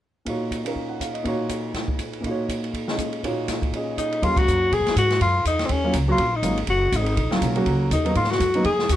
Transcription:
0.25 A#2 A#3 D#4 F4, kick, ride
0.29 F#4 C#5
0.51 kick, hi-hat pedal, ride
0.65 A#3 C#4 D#4 F4 A#4, ride
0.76 kick
0.89 F#5
1.00 F5, kick, hi-hat pedal, ride
1.14 D#5, ride
1.24 A#2 A#3 D#4 F4 F#4, kick, ride
1.29 C#5
1.49 kick, hi-hat pedal, ride
1.74 kick, snare, ride
1.88 kick
1.99 kick, hi-hat pedal, ride
2.13 ride
2.20 A#2 A#3, kick, ride
2.25 D#4 F4 F#4
2.31 C#5
2.49 kick, hi-hat pedal, ride
2.64 ride
2.74 kick, ride
2.87 C#4 F4 G#4 D#5, snare
2.98 kick, hi-hat pedal, ride
3.13 ride
3.23 A#2 A#3 D#4 F4 F#4 C#5, kick, ride
3.48 kick, snare, hi-hat pedal, ride
3.62 kick, ride
3.73 C#4 F4 G#4 D#5, kick, ride
3.98 D#4, kick, hi-hat pedal, ride
4.12 ride
4.22 D#2 F#3 A#3 C#4 F4 F5, kick, ride
4.37 F#4, kick, ride
4.48 F#2, hi-hat pedal
4.72 A#2 G#4, kick, ride
4.80 F#2
4.86 D#2, snare, ride
4.96 G#2 F#4, kick, hi-hat pedal, ride
5.10 snare, ride
5.21 F#2 F4, kick, ride
5.45 E2 D#4, kick, hi-hat pedal, ride
5.59 snare, ride
5.66 D#2 C4, kick, ride
5.71 C#4
5.84 F#3 A#3 C#4 F4
5.93 C#2, kick, hi-hat pedal, ride
6.08 F#3 A#3 C#4 F4 F#4
6.18 A#1, kick, ride
6.36 D#4
6.43 G#1 F#3 A#3 C#4 F4, kick, hi-hat pedal, ride
6.58 ride
6.67 F#1 F#4, kick, ride
6.92 G#1 D#4, kick, hi-hat pedal, ride
7.06 ride
7.17 A#1, kick, ride
7.31 F#3 A#3 C#4 F4, muted upright bass stroke, snare
7.41 B1, kick, hi-hat pedal, ride
7.56 F#3 A#3 C#4 F#4, ride
7.66 C#2, kick, ride
7.91 D#2 D#4, kick, hi-hat pedal, ride
8.05 F#3 A#3 B3 D#4, ride
8.15 G#2 F4, kick, ride
8.24 snare
8.31 F#4, snare
8.40 F#2, kick, hi-hat pedal, ride
8.54 F#3 A#3 B3 D#4, ride
8.64 F2 G#4, kick, ride
8.79 snare
8.89 D#2 F#4, kick, hi-hat pedal, ride

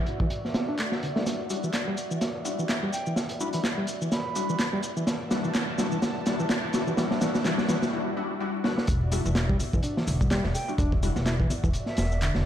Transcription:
Already playing: G3 D4 E4 F#4 D5 E5 F#5
0.06 closed hi-hat
0.20 E3, kick
0.30 closed hi-hat
0.45 snare
0.54 B3, snare, closed hi-hat
0.69 D4
0.78 A3, clap, closed hi-hat
0.92 snare
1.03 D3, closed hi-hat
1.16 G3 A3 D4 E4 F#4, snare
1.26 snare, closed hi-hat, shaker
1.50 G3 D4 E4 F#4, closed hi-hat, shaker
1.64 E3, shaker
1.73 snare, clap, closed hi-hat, shaker
1.88 G3
1.97 closed hi-hat, shaker
2.11 E3, shaker
2.21 snare, closed hi-hat, shaker
2.45 G3 D4 E4 F#4, closed hi-hat, shaker
2.59 E3, shaker
2.69 snare, clap, closed hi-hat, shaker
2.83 G3
2.93 G5, closed hi-hat, shaker
3.06 E3, shaker
3.16 snare, closed hi-hat, shaker
3.29 closed hi-hat
3.40 G3 D4 E4 F#4 B5, shaker
3.53 E3 B5, closed hi-hat, shaker
3.64 snare, clap, closed hi-hat, shaker
3.78 G3
3.87 closed hi-hat, shaker
4.02 E3, shaker
4.12 B5, snare, closed hi-hat, shaker
4.35 G3 D4 E4 F#4, closed hi-hat, shaker
4.49 E3, shaker
4.59 snare, clap, closed hi-hat, shaker
4.73 G3
4.83 closed hi-hat, shaker
4.97 E3, shaker
5.07 A5, snare, closed hi-hat, shaker
5.30 G3 D4 E4 F#4, snare, closed hi-hat, shaker
5.44 E3, shaker
5.54 snare, clap, closed hi-hat, shaker
5.78 G3 D4 E4 F#4, snare, closed hi-hat, shaker
5.92 E3, shaker
6.02 snare, closed hi-hat, shaker
6.26 G3 D4 E4 F#4, snare, closed hi-hat, shaker
6.40 E3, shaker
6.49 snare, clap, closed hi-hat, shaker
6.73 G3 D4 E4 F#4, snare, closed hi-hat, shaker
6.87 E3, shaker
6.97 E3 G3 D4 E4 F#4, snare, closed hi-hat, shaker
7.11 snare
7.21 E3 G3 D4 E4 F#4, snare, closed hi-hat, shaker
7.35 snare, shaker
7.45 E3 G3 D4 E4 F#4, snare, clap, closed hi-hat, shaker
7.58 snare, shaker
7.68 E3 G3 D4 E4 F#4, snare, closed hi-hat, shaker
7.82 snare, shaker
7.93 G3 D4 E4 F#4
8.17 G3 D4 E4 F#4
8.40 G3 D4 E4 F#4
8.64 G3 D4 E4 F#4, snare
8.78 snare
8.87 E1 F#4 D5 E5, kick, closed hi-hat, shaker
9.12 G3 D4 E4 F#4, closed hi-hat, open hi-hat, high bongo, shaker
9.26 E1 E3, shaker
9.35 snare, clap, closed hi-hat, shaker
9.49 G3, kick
9.59 closed hi-hat, open hi-hat, high conga, shaker
9.73 E1 E3, kick, high bongo, shaker
9.83 D4, closed hi-hat, shaker
9.97 E3, snare
10.07 E1 D3, closed hi-hat, open hi-hat, shaker
10.21 G3, kick, shaker
10.31 G3, snare, clap, closed hi-hat, shaker
10.44 E1, snare
10.54 G5, closed hi-hat, open hi-hat, high bongo, shaker
10.68 G3 D4 E4 F#4, shaker
10.78 E1 D4, kick, closed hi-hat, shaker
10.92 kick
11.03 G3 D4 E4 F#4, closed hi-hat, open hi-hat, high bongo, shaker
11.16 E1, snare, shaker
11.26 E4, snare, clap, closed hi-hat, shaker
11.40 E3, kick
11.50 closed hi-hat, open hi-hat, high conga, shaker
11.64 E1 E3, kick, high bongo, shaker
11.73 closed hi-hat, shaker
11.86 E5, snare
11.97 E1, snare, closed hi-hat, open hi-hat, shaker
12.12 shaker
12.21 D3, clap, closed hi-hat, shaker
12.35 E1, snare

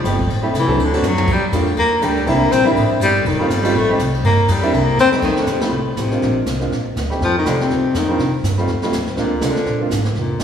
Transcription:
0.04 G1 G3 A3 C4 D#4 G4, kick, hi-hat pedal, ride
0.19 kick, ride
0.29 A1, kick, ride
0.42 G3 A3 C4 E4 G4
0.54 C2, kick, snare, hi-hat pedal, ride
0.59 E3
0.67 F#3 A3 C4 D4 A4, kick, ride
0.79 D2, kick, ride
0.84 D3
0.93 F#3 A3 C4 D4 F#4, ride
1.02 F#2, hi-hat pedal, high tom
1.07 F#3
1.18 high tom
1.28 G2, kick, crash
1.32 G3
1.52 F2 G3 A3 A#3 D4 F4, kick, hi-hat pedal, ride
1.67 ride
1.77 D#2 A#3, kick, ride
2.01 D2 G3 A3 A#3 D4 G4, kick, hi-hat pedal, ride
2.17 ride
2.26 C2 G3 A#3 C4 D4 E4, kick, ride
2.51 A#1 C4, kick, hi-hat pedal, ride
2.64 G3 A#3 C4 D4 E4, ride
2.76 A1, kick, ride
2.89 muted upright bass stroke
3.00 G1 G3, kick, hi-hat pedal, ride
3.15 ride
3.25 F1 D#3, kick, ride
3.39 G3 A3 C4 D#4 F4, muted upright bass stroke
3.49 G1 G3, kick, hi-hat pedal, ride
3.63 G3 A3 C4 D#4 F4, ride
3.74 A1 A3, kick
3.88 G3 A3 C4 D#4 G4
3.99 C2, kick, hi-hat pedal, ride
4.14 ride
4.24 G2 A#3, kick, ride
4.48 F2, kick, hi-hat pedal, ride
4.52 G3
4.62 G3 A#3 C4 D4 E4, ride
4.73 C2 A#3, kick, ride
4.97 E2 C4, snare, hi-hat pedal
5.11 G3 A3 C4 D#4 G4, muted upright bass stroke, snare
5.22 F2 D#3, brush sweep, kick, snare, crash
5.36 D3, muted upright bass stroke, snare
5.46 D#2, kick, snare, hi-hat pedal
5.51 C3
5.61 A2 G3 A3 C4 D#4 F4, snare, ride
5.71 C2, brush sweep
5.97 A1 C3, kick, snare, hi-hat pedal
6.11 G#3 A#3 C4 D4 F4, snare
6.21 A#1, brush sweep, kick, snare
6.46 C2, kick, snare, hi-hat pedal
6.60 G#3 A#3 C4 D4 F4, snare
6.71 A#1, brush sweep, kick, snare
6.96 D2, kick, snare, hi-hat pedal
7.10 G3 A3 C4 D#4 G4, snare
7.21 F2 F3, brush sweep, kick, snare
7.38 D#3
7.45 C2 D3 G3 A3 C4 D#4 F4, kick, snare, hi-hat pedal
7.60 C3, snare
7.70 D#2, brush sweep, kick, snare
7.83 muted upright bass stroke
7.94 F2 D#3, kick, snare, hi-hat pedal
8.08 G3 A#3 C4 D4 F4
8.19 C3, brush sweep, kick, snare
8.43 G2, kick, snare, hi-hat pedal
8.57 G3 A3 C4 D#4 F4, snare
8.67 F2, brush sweep, kick, snare
8.81 G3 A3 C4 D#4 F4, muted upright bass stroke, snare
8.92 D#2, kick, snare, hi-hat pedal
9.06 snare
9.16 D2 A#2 G#3 A#3 C4 D4 F4, brush sweep, kick, snare
9.41 C2 D3 G#3 A#3 C4 D4 F4, kick, snare, hi-hat pedal
9.55 muted upright bass stroke, snare
9.66 A#1, brush sweep, kick, snare
9.80 G#3 A#3 C4 D4 F4
9.91 G#1, kick, snare, hi-hat pedal
10.05 snare
10.15 F1, brush sweep, kick, snare
10.20 A#2
10.39 G1 G#3 A#3 C4 D4, kick, snare, hi-hat pedal

